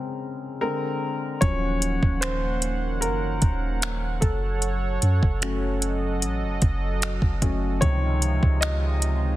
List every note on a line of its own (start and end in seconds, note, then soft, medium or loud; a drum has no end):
0.00 0.64 C#3 medium
0.00 0.62 G#3 soft
0.00 0.63 C4 medium
0.61 1.38 D3 medium
0.61 1.38 G#3 medium
0.61 1.38 C4 medium
0.61 1.44 A#4 medium
1.41 2.00 D#1 loud
1.41 4.19 D#3 medium
1.41 1.95 F3 medium
1.41 1.95 F#3 soft
1.41 4.19 A#3 medium
1.41 4.19 C#4 medium
1.41 1.95 C#4 medium
1.41 2.24 C#5 loud
1.41 7.78 F#5 medium
1.41 kick loud
1.41 closed hi-hat medium
1.82 closed hi-hat medium
2.03 3.04 D#1 loud
2.03 kick medium
2.21 3.04 C5 medium
2.21 finger snap loud
2.21 closed hi-hat medium
2.62 closed hi-hat medium
3.01 3.40 F#1 loud
3.01 4.25 A#4 medium
3.01 closed hi-hat medium
3.42 4.19 D#1 loud
3.42 kick medium
3.42 closed hi-hat medium
3.82 finger snap loud
3.82 closed hi-hat medium
4.21 4.99 F#1 loud
4.21 7.78 F#3 medium
4.21 6.57 A4 medium
4.21 7.78 A4 medium
4.21 5.80 C#5 medium
4.21 kick medium
4.21 closed hi-hat medium
4.62 closed hi-hat medium
5.02 5.21 F#2 loud
5.02 closed hi-hat medium
5.23 6.24 F#1 loud
5.23 kick medium
5.41 5.95 F#3 medium
5.41 5.95 A3 soft
5.41 5.95 C#4 medium
5.41 finger snap medium
5.41 closed hi-hat medium
5.82 7.80 D#5 medium
5.82 closed hi-hat medium
6.22 6.44 A1 medium
6.22 closed hi-hat medium
6.42 6.61 F#1 loud
6.62 7.20 F#1 loud
6.62 kick medium
6.62 closed hi-hat medium
7.02 finger snap loud
7.02 closed hi-hat medium
7.22 7.41 F#1 loud
7.22 kick medium
7.42 7.81 F#1 loud
7.42 7.78 F#3 soft
7.42 7.78 A3 soft
7.42 7.78 C#4 medium
7.42 kick medium
7.42 closed hi-hat medium
7.81 8.40 C#2 loud
7.81 9.36 C3 medium
7.81 8.98 C3 medium
7.81 8.98 D#3 medium
7.81 8.98 F3 soft
7.81 9.36 G#3 medium
7.81 9.36 D#4 medium
7.81 9.36 F4 medium
7.81 8.57 C#5 medium
7.81 kick loud
7.81 closed hi-hat medium
8.22 closed hi-hat medium
8.43 9.36 C#2 loud
8.43 kick medium
8.61 9.36 D#5 loud
8.61 finger snap loud
8.61 closed hi-hat medium
9.02 closed hi-hat medium